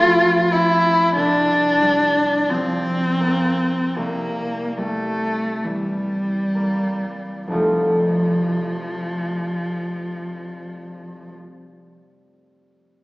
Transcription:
0, 0, Header, 1, 3, 480
1, 0, Start_track
1, 0, Key_signature, -1, "major"
1, 0, Tempo, 1260504
1, 442, Time_signature, 4, 2, 24, 8
1, 443, Tempo, 1333333
1, 923, Tempo, 1474201
1, 1403, Tempo, 1671309
1, 1883, Tempo, 1875000
1, 2363, Tempo, 1834862
1, 3807, End_track
2, 0, Start_track
2, 0, Title_t, "Cello"
2, 0, Program_c, 0, 42
2, 0, Note_on_c, 0, 65, 90
2, 198, Note_on_c, 0, 64, 77
2, 203, Note_off_c, 0, 65, 0
2, 437, Note_off_c, 0, 64, 0
2, 439, Note_on_c, 0, 62, 85
2, 921, Note_on_c, 0, 60, 73
2, 926, Note_off_c, 0, 62, 0
2, 1402, Note_on_c, 0, 58, 67
2, 1407, Note_off_c, 0, 60, 0
2, 1635, Note_on_c, 0, 57, 68
2, 1639, Note_off_c, 0, 58, 0
2, 1888, Note_on_c, 0, 55, 59
2, 1892, Note_off_c, 0, 57, 0
2, 2358, Note_off_c, 0, 55, 0
2, 2359, Note_on_c, 0, 53, 55
2, 3353, Note_off_c, 0, 53, 0
2, 3807, End_track
3, 0, Start_track
3, 0, Title_t, "Harp"
3, 0, Program_c, 1, 46
3, 0, Note_on_c, 1, 33, 66
3, 0, Note_on_c, 1, 53, 49
3, 0, Note_on_c, 1, 57, 52
3, 0, Note_on_c, 1, 60, 51
3, 190, Note_off_c, 1, 60, 0
3, 194, Note_on_c, 1, 60, 50
3, 442, Note_on_c, 1, 36, 56
3, 460, Note_off_c, 1, 33, 0
3, 461, Note_off_c, 1, 57, 0
3, 676, Note_on_c, 1, 55, 45
3, 920, Note_off_c, 1, 53, 0
3, 924, Note_on_c, 1, 53, 45
3, 1152, Note_on_c, 1, 58, 47
3, 1397, Note_off_c, 1, 36, 0
3, 1401, Note_on_c, 1, 36, 49
3, 1421, Note_off_c, 1, 53, 0
3, 1529, Note_off_c, 1, 60, 0
3, 1631, Note_off_c, 1, 55, 0
3, 1634, Note_on_c, 1, 55, 41
3, 1882, Note_on_c, 1, 52, 40
3, 2112, Note_off_c, 1, 58, 0
3, 2115, Note_on_c, 1, 58, 38
3, 2353, Note_on_c, 1, 29, 45
3, 2357, Note_off_c, 1, 36, 0
3, 2360, Note_on_c, 1, 36, 35
3, 2361, Note_on_c, 1, 60, 38
3, 2363, Note_on_c, 1, 57, 38
3, 2364, Note_on_c, 1, 65, 39
3, 2369, Note_on_c, 1, 53, 39
3, 2378, Note_off_c, 1, 58, 0
3, 2380, Note_off_c, 1, 52, 0
3, 2380, Note_off_c, 1, 55, 0
3, 3356, Note_off_c, 1, 60, 0
3, 3357, Note_off_c, 1, 57, 0
3, 3357, Note_off_c, 1, 65, 0
3, 3369, Note_off_c, 1, 53, 0
3, 3373, Note_off_c, 1, 29, 0
3, 3380, Note_off_c, 1, 36, 0
3, 3807, End_track
0, 0, End_of_file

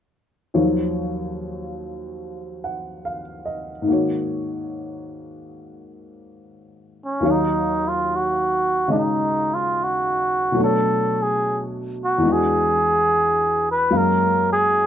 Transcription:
0, 0, Header, 1, 3, 480
1, 0, Start_track
1, 0, Key_signature, -6, "minor"
1, 0, Tempo, 835655
1, 309, Time_signature, 4, 2, 24, 8
1, 8539, End_track
2, 0, Start_track
2, 0, Title_t, "Muted trumpet"
2, 0, Program_c, 0, 59
2, 4050, Note_on_c, 0, 61, 57
2, 4199, Note_on_c, 0, 63, 68
2, 4207, Note_off_c, 0, 61, 0
2, 4530, Note_on_c, 0, 65, 65
2, 4539, Note_off_c, 0, 63, 0
2, 4687, Note_on_c, 0, 66, 73
2, 4695, Note_off_c, 0, 65, 0
2, 5110, Note_off_c, 0, 66, 0
2, 5122, Note_on_c, 0, 62, 45
2, 5162, Note_on_c, 0, 63, 73
2, 5171, Note_off_c, 0, 62, 0
2, 5483, Note_on_c, 0, 65, 69
2, 5492, Note_off_c, 0, 63, 0
2, 5650, Note_on_c, 0, 66, 69
2, 5659, Note_off_c, 0, 65, 0
2, 6097, Note_off_c, 0, 66, 0
2, 6113, Note_on_c, 0, 69, 76
2, 6447, Note_on_c, 0, 68, 71
2, 6456, Note_off_c, 0, 69, 0
2, 6686, Note_off_c, 0, 68, 0
2, 6919, Note_on_c, 0, 66, 70
2, 7079, Note_on_c, 0, 68, 82
2, 7088, Note_off_c, 0, 66, 0
2, 7857, Note_off_c, 0, 68, 0
2, 7877, Note_on_c, 0, 71, 76
2, 8025, Note_on_c, 0, 70, 81
2, 8033, Note_off_c, 0, 71, 0
2, 8330, Note_off_c, 0, 70, 0
2, 8343, Note_on_c, 0, 68, 81
2, 8539, Note_off_c, 0, 68, 0
2, 8539, End_track
3, 0, Start_track
3, 0, Title_t, "Grand piano"
3, 0, Program_c, 1, 0
3, 310, Note_on_c, 1, 39, 36
3, 310, Note_on_c, 1, 51, 34
3, 314, Note_on_c, 1, 54, 33
3, 315, Note_on_c, 1, 53, 33
3, 315, Note_on_c, 1, 73, 40
3, 429, Control_c, 1, 64, 127
3, 1517, Note_on_c, 1, 78, 33
3, 1753, Note_on_c, 1, 77, 34
3, 1848, Note_off_c, 1, 78, 0
3, 1985, Note_on_c, 1, 75, 36
3, 2129, Note_off_c, 1, 77, 0
3, 2194, Note_on_c, 1, 44, 33
3, 2199, Note_off_c, 1, 51, 0
3, 2207, Note_on_c, 1, 51, 30
3, 2225, Note_on_c, 1, 58, 29
3, 2227, Note_off_c, 1, 39, 0
3, 2229, Note_off_c, 1, 53, 0
3, 2229, Note_off_c, 1, 54, 0
3, 2229, Note_off_c, 1, 73, 0
3, 2233, Control_c, 1, 64, 0
3, 2240, Note_on_c, 1, 66, 29
3, 2256, Note_on_c, 1, 73, 38
3, 2322, Note_off_c, 1, 75, 0
3, 2335, Control_c, 1, 64, 127
3, 4129, Note_off_c, 1, 44, 0
3, 4136, Note_off_c, 1, 51, 0
3, 4138, Note_on_c, 1, 39, 42
3, 4145, Note_off_c, 1, 58, 0
3, 4150, Note_on_c, 1, 51, 37
3, 4152, Note_off_c, 1, 66, 0
3, 4152, Control_c, 1, 64, 0
3, 4152, Note_on_c, 1, 54, 39
3, 4160, Note_off_c, 1, 73, 0
3, 4163, Note_on_c, 1, 77, 39
3, 4170, Note_on_c, 1, 73, 46
3, 4264, Control_c, 1, 64, 127
3, 5100, Note_on_c, 1, 49, 34
3, 5110, Note_on_c, 1, 56, 31
3, 5111, Note_on_c, 1, 63, 29
3, 5121, Note_on_c, 1, 75, 39
3, 6043, Note_on_c, 1, 47, 36
3, 6049, Note_off_c, 1, 54, 0
3, 6058, Note_on_c, 1, 54, 35
3, 6060, Note_off_c, 1, 39, 0
3, 6062, Note_off_c, 1, 49, 0
3, 6066, Note_off_c, 1, 51, 0
3, 6067, Note_off_c, 1, 56, 0
3, 6067, Note_off_c, 1, 63, 0
3, 6072, Note_off_c, 1, 75, 0
3, 6073, Note_off_c, 1, 77, 0
3, 6073, Control_c, 1, 64, 0
3, 6073, Note_on_c, 1, 57, 35
3, 6076, Note_off_c, 1, 73, 0
3, 6092, Note_on_c, 1, 62, 33
3, 6108, Note_on_c, 1, 73, 43
3, 6163, Control_c, 1, 64, 127
3, 6996, Note_on_c, 1, 40, 41
3, 7010, Note_on_c, 1, 52, 37
3, 7011, Note_off_c, 1, 47, 0
3, 7019, Note_off_c, 1, 54, 0
3, 7027, Note_off_c, 1, 57, 0
3, 7027, Note_on_c, 1, 56, 38
3, 7030, Control_c, 1, 64, 0
3, 7035, Note_off_c, 1, 62, 0
3, 7044, Note_off_c, 1, 73, 0
3, 7044, Note_on_c, 1, 62, 39
3, 7057, Note_on_c, 1, 66, 48
3, 7126, Control_c, 1, 64, 127
3, 7969, Note_off_c, 1, 40, 0
3, 7976, Note_off_c, 1, 52, 0
3, 7984, Note_off_c, 1, 56, 0
3, 7988, Note_on_c, 1, 54, 35
3, 7989, Note_on_c, 1, 42, 38
3, 7990, Control_c, 1, 64, 0
3, 7992, Note_off_c, 1, 62, 0
3, 7994, Note_on_c, 1, 56, 34
3, 7994, Note_on_c, 1, 58, 34
3, 7996, Note_on_c, 1, 77, 42
3, 7999, Note_off_c, 1, 66, 0
3, 8090, Control_c, 1, 64, 127
3, 8539, Note_off_c, 1, 42, 0
3, 8539, Note_off_c, 1, 54, 0
3, 8539, Note_off_c, 1, 56, 0
3, 8539, Note_off_c, 1, 58, 0
3, 8539, Note_off_c, 1, 77, 0
3, 8539, End_track
0, 0, End_of_file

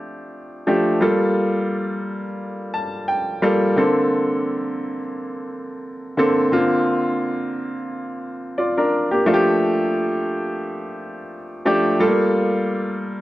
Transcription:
0, 0, Header, 1, 2, 480
1, 0, Start_track
1, 0, Key_signature, -1, "major"
1, 0, Tempo, 685714
1, 719, Time_signature, 4, 2, 24, 8
1, 9248, End_track
2, 0, Start_track
2, 0, Title_t, "Grand piano"
2, 0, Program_c, 0, 0
2, 0, Control_c, 0, 64, 127
2, 0, Note_on_c, 0, 53, 66
2, 0, Note_on_c, 0, 57, 61
2, 0, Note_on_c, 0, 62, 65
2, 0, Note_on_c, 0, 67, 79
2, 467, Note_off_c, 0, 53, 0
2, 467, Note_on_c, 0, 53, 70
2, 469, Note_off_c, 0, 57, 0
2, 469, Note_on_c, 0, 57, 64
2, 473, Note_off_c, 0, 62, 0
2, 473, Note_on_c, 0, 62, 64
2, 479, Note_off_c, 0, 67, 0
2, 479, Note_on_c, 0, 67, 72
2, 685, Note_off_c, 0, 53, 0
2, 686, Note_off_c, 0, 57, 0
2, 688, Note_off_c, 0, 62, 0
2, 691, Note_off_c, 0, 67, 0
2, 705, Note_on_c, 0, 55, 69
2, 711, Note_on_c, 0, 58, 60
2, 713, Note_on_c, 0, 65, 69
2, 715, Note_on_c, 0, 69, 80
2, 728, Control_c, 0, 64, 0
2, 833, Control_c, 0, 64, 127
2, 1559, Note_off_c, 0, 55, 0
2, 1562, Note_off_c, 0, 58, 0
2, 1563, Note_off_c, 0, 65, 0
2, 1564, Note_off_c, 0, 69, 0
2, 1916, Note_on_c, 0, 81, 59
2, 2143, Note_off_c, 0, 81, 0
2, 2156, Note_on_c, 0, 79, 61
2, 2383, Note_off_c, 0, 79, 0
2, 2395, Note_on_c, 0, 55, 76
2, 2395, Note_on_c, 0, 58, 61
2, 2399, Note_on_c, 0, 77, 58
2, 2400, Note_on_c, 0, 65, 61
2, 2404, Note_on_c, 0, 69, 81
2, 2611, Note_off_c, 0, 55, 0
2, 2611, Note_off_c, 0, 58, 0
2, 2614, Note_off_c, 0, 65, 0
2, 2615, Note_off_c, 0, 69, 0
2, 2624, Note_off_c, 0, 77, 0
2, 2635, Note_on_c, 0, 50, 71
2, 2637, Note_on_c, 0, 58, 59
2, 2639, Note_on_c, 0, 60, 62
2, 2645, Note_on_c, 0, 69, 74
2, 2652, Control_c, 0, 64, 0
2, 2755, Control_c, 0, 64, 127
2, 3486, Note_off_c, 0, 50, 0
2, 3487, Note_off_c, 0, 58, 0
2, 3488, Note_off_c, 0, 60, 0
2, 3491, Note_off_c, 0, 69, 0
2, 4321, Note_on_c, 0, 50, 71
2, 4324, Note_on_c, 0, 58, 63
2, 4329, Note_on_c, 0, 60, 69
2, 4334, Note_on_c, 0, 69, 77
2, 4536, Note_off_c, 0, 50, 0
2, 4537, Note_off_c, 0, 58, 0
2, 4540, Note_off_c, 0, 60, 0
2, 4542, Note_off_c, 0, 69, 0
2, 4564, Note_on_c, 0, 50, 67
2, 4566, Note_on_c, 0, 58, 61
2, 4570, Note_on_c, 0, 60, 69
2, 4572, Note_on_c, 0, 65, 82
2, 4576, Control_c, 0, 64, 0
2, 4714, Control_c, 0, 64, 127
2, 5412, Note_off_c, 0, 50, 0
2, 5412, Note_off_c, 0, 58, 0
2, 5415, Note_off_c, 0, 60, 0
2, 5415, Note_off_c, 0, 65, 0
2, 6005, Note_on_c, 0, 74, 52
2, 6009, Note_on_c, 0, 65, 48
2, 6129, Note_off_c, 0, 74, 0
2, 6132, Note_off_c, 0, 65, 0
2, 6142, Note_on_c, 0, 70, 59
2, 6144, Note_on_c, 0, 62, 54
2, 6367, Note_off_c, 0, 70, 0
2, 6369, Note_off_c, 0, 62, 0
2, 6379, Note_on_c, 0, 67, 56
2, 6385, Note_on_c, 0, 58, 48
2, 6483, Note_on_c, 0, 53, 82
2, 6484, Note_on_c, 0, 57, 73
2, 6490, Note_on_c, 0, 62, 68
2, 6490, Note_on_c, 0, 65, 69
2, 6497, Control_c, 0, 64, 0
2, 6526, Note_off_c, 0, 67, 0
2, 6536, Note_on_c, 0, 67, 87
2, 6538, Note_off_c, 0, 65, 0
2, 6609, Note_off_c, 0, 58, 0
2, 6611, Control_c, 0, 64, 127
2, 7329, Note_off_c, 0, 53, 0
2, 7330, Note_off_c, 0, 57, 0
2, 7333, Note_off_c, 0, 62, 0
2, 7356, Note_off_c, 0, 67, 0
2, 8157, Note_on_c, 0, 53, 74
2, 8160, Note_on_c, 0, 57, 73
2, 8164, Note_on_c, 0, 62, 75
2, 8167, Note_on_c, 0, 67, 85
2, 8372, Note_off_c, 0, 53, 0
2, 8373, Note_off_c, 0, 57, 0
2, 8375, Note_off_c, 0, 62, 0
2, 8376, Note_off_c, 0, 67, 0
2, 8398, Note_on_c, 0, 55, 73
2, 8401, Note_on_c, 0, 57, 58
2, 8402, Note_on_c, 0, 65, 78
2, 8403, Note_on_c, 0, 69, 86
2, 8412, Control_c, 0, 64, 0
2, 8446, Note_on_c, 0, 58, 73
2, 8452, Note_off_c, 0, 57, 0
2, 8523, Control_c, 0, 64, 127
2, 9243, Note_off_c, 0, 55, 0
2, 9245, Note_off_c, 0, 65, 0
2, 9246, Note_off_c, 0, 69, 0
2, 9248, Note_off_c, 0, 58, 0
2, 9248, End_track
0, 0, End_of_file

